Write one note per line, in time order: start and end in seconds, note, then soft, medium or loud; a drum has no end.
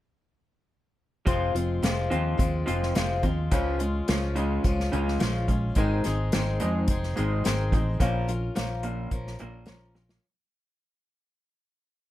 1.26 1.52 F1 medium
1.26 1.55 F2 medium
1.26 1.55 C3 medium
1.26 1.55 F3 medium
1.26 1.55 G#3 medium
1.26 1.55 C4 medium
1.26 1.53 F4 medium
1.26 kick loud
1.26 closed hi-hat medium
1.55 1.79 F1 medium
1.55 1.83 F3 soft
1.55 1.83 G#3 soft
1.55 1.82 C4 medium
1.55 1.82 F4 medium
1.55 closed hi-hat medium
1.82 2.08 F1 medium
1.82 2.11 F2 medium
1.82 2.11 C3 medium
1.82 2.11 F3 medium
1.82 2.10 G#3 medium
1.82 2.10 C4 medium
1.82 2.09 F4 medium
1.82 snare loud
1.82 closed hi-hat medium
2.11 2.36 D#2 medium
2.11 2.36 F3 soft
2.11 2.37 G#3 soft
2.11 2.37 C4 soft
2.11 2.39 F4 medium
2.11 closed hi-hat medium
2.38 2.63 D#2 medium
2.38 2.67 F3 medium
2.38 2.66 G#3 medium
2.38 2.66 C4 medium
2.38 2.65 F4 medium
2.38 kick loud
2.38 closed hi-hat medium
2.66 2.92 F1 medium
2.66 2.94 F3 soft
2.66 2.95 G#3 soft
2.66 2.95 C4 medium
2.66 2.95 F4 medium
2.66 closed hi-hat medium
2.83 snare soft
2.95 3.21 F1 medium
2.95 3.23 F2 medium
2.95 3.23 C3 medium
2.95 3.24 F3 medium
2.95 3.23 G#3 medium
2.95 3.23 C4 medium
2.95 3.22 F4 medium
2.95 snare loud
2.95 closed hi-hat medium
3.23 3.48 D#2 medium
3.23 3.51 F3 soft
3.23 3.52 G#3 soft
3.23 3.52 C4 soft
3.23 3.52 F4 medium
3.23 kick medium
3.23 closed hi-hat medium
3.51 4.00 C#2 medium
3.51 3.80 C#3 medium
3.51 3.80 F3 medium
3.51 3.79 G#3 medium
3.51 3.78 C#4 medium
3.51 3.78 F4 medium
3.51 kick loud
3.51 closed hi-hat medium
3.79 4.06 C#3 medium
3.79 4.08 G#3 medium
3.79 4.08 C#4 medium
3.79 4.07 F4 medium
3.79 closed hi-hat medium
4.08 4.57 C#2 loud
4.08 4.36 C#3 medium
4.08 4.36 F3 medium
4.08 4.36 G#3 medium
4.08 4.36 C#4 medium
4.08 4.36 F4 medium
4.08 snare loud
4.08 closed hi-hat medium
4.36 4.62 C#3 medium
4.36 4.63 G#3 soft
4.36 4.64 C#4 medium
4.36 4.64 F4 medium
4.36 closed hi-hat medium
4.64 4.89 C#2 medium
4.64 4.92 F3 medium
4.64 4.92 G#3 medium
4.64 4.92 C#4 medium
4.64 4.91 F4 medium
4.64 kick loud
4.64 closed hi-hat medium
4.80 snare soft
4.92 5.17 C#2 medium
4.92 5.18 C#3 medium
4.92 5.19 G#3 medium
4.92 5.20 C#4 soft
4.92 5.19 F4 medium
4.92 closed hi-hat soft
5.08 snare soft
5.19 5.70 A#1 medium
5.19 5.48 C#3 medium
5.19 5.48 F3 medium
5.19 5.48 G#3 medium
5.19 5.48 C#4 medium
5.19 5.46 F4 medium
5.19 snare loud
5.19 closed hi-hat medium
5.48 5.74 C#3 medium
5.48 5.76 G#3 soft
5.48 5.77 C#4 medium
5.48 5.76 F4 soft
5.48 kick medium
5.48 closed hi-hat medium
5.75 6.01 G#1 medium
5.75 6.04 G#2 medium
5.75 6.05 D#3 medium
5.75 6.05 G#3 medium
5.75 6.05 C4 medium
5.75 6.05 D#4 medium
5.75 6.04 G#4 medium
5.75 kick loud
5.75 closed hi-hat medium
6.04 6.30 G#1 medium
6.04 6.30 G#2 medium
6.04 6.30 D#3 medium
6.04 6.32 G#3 soft
6.04 6.32 C4 soft
6.04 6.33 D#4 medium
6.04 6.33 G#4 medium
6.04 snare soft
6.04 closed hi-hat medium
6.32 6.58 G#1 medium
6.32 6.61 G#2 medium
6.32 6.61 D#3 medium
6.32 6.61 G#3 medium
6.32 6.61 C4 medium
6.32 6.61 D#4 medium
6.32 6.60 G#4 medium
6.32 snare loud
6.32 closed hi-hat medium
6.60 6.86 F2 medium
6.60 6.87 G#2 medium
6.60 6.87 D#3 medium
6.60 6.88 C4 soft
6.60 6.89 D#4 medium
6.60 6.89 G#4 medium
6.60 closed hi-hat medium
6.64 6.88 G#3 soft
6.88 7.13 F1 medium
6.88 7.14 G#2 medium
6.88 7.17 G#3 medium
6.88 7.17 C4 medium
6.88 7.16 D#4 medium
6.88 7.15 G#4 medium
6.88 kick loud
6.88 closed hi-hat medium
7.03 snare soft
7.16 7.42 G#1 medium
7.16 7.43 G#2 medium
7.16 7.43 D#3 medium
7.16 7.44 G#3 soft
7.16 7.44 C4 soft
7.16 7.45 D#4 medium
7.16 7.44 G#4 medium
7.16 closed hi-hat medium
7.44 7.70 G#1 medium
7.44 7.72 G#2 medium
7.44 7.73 D#3 medium
7.44 7.73 G#3 medium
7.44 7.73 C4 medium
7.44 7.72 D#4 medium
7.44 7.72 G#4 medium
7.44 snare medium
7.44 closed hi-hat medium
7.72 7.97 A1 medium
7.72 7.98 G#2 medium
7.72 7.98 D#3 medium
7.72 8.00 G#3 soft
7.72 8.00 C4 soft
7.72 8.01 D#4 medium
7.72 8.01 G#4 soft
7.72 kick medium
7.72 closed hi-hat medium
8.00 8.49 A#1 medium
8.00 8.28 A#2 medium
8.00 8.29 F3 medium
8.00 8.27 A#3 medium
8.00 8.28 C#4 medium
8.00 8.27 F4 medium
8.00 8.26 A#4 medium
8.00 kick loud
8.00 closed hi-hat medium
8.28 8.54 A#2 medium
8.28 8.54 F3 medium
8.28 8.54 C#4 soft
8.28 8.55 F4 medium
8.28 8.56 A#4 medium
8.28 closed hi-hat medium
8.55 9.06 A#1 loud
8.55 8.84 A#2 medium
8.55 8.84 F3 medium
8.55 8.84 C#4 medium
8.55 8.84 F4 medium
8.55 8.83 A#4 medium
8.55 snare loud
8.55 closed hi-hat medium
8.83 9.10 A#2 medium
8.83 9.10 F3 medium
8.83 9.11 A#3 loud
8.83 9.10 C#4 soft
8.83 9.11 F4 soft
8.83 9.12 A#4 medium
8.83 closed hi-hat medium
9.11 9.36 A#1 medium
9.11 9.38 A#2 medium
9.11 9.40 F3 medium
9.11 9.40 C#4 medium
9.11 9.40 F4 medium
9.11 9.39 A#4 medium
9.11 kick loud
9.11 closed hi-hat medium
9.27 snare soft
9.39 9.65 A#1 medium
9.39 9.66 A#2 medium
9.39 9.66 F3 medium
9.39 9.67 A#3 loud
9.39 9.65 C#4 medium
9.39 9.65 F4 medium
9.39 9.66 A#4 medium
9.39 closed hi-hat medium
9.66 10.17 A#1 medium
9.66 9.95 A#2 medium
9.66 9.95 F3 medium
9.66 9.95 C#4 medium
9.66 9.95 F4 medium
9.66 9.94 A#4 medium
9.66 snare loud
9.66 closed hi-hat medium
9.95 10.20 A#2 medium
9.95 10.21 F3 medium
9.95 10.24 C#4 soft
9.95 10.24 F4 soft
9.95 10.23 A#4 soft
9.95 snare soft
10.09 snare medium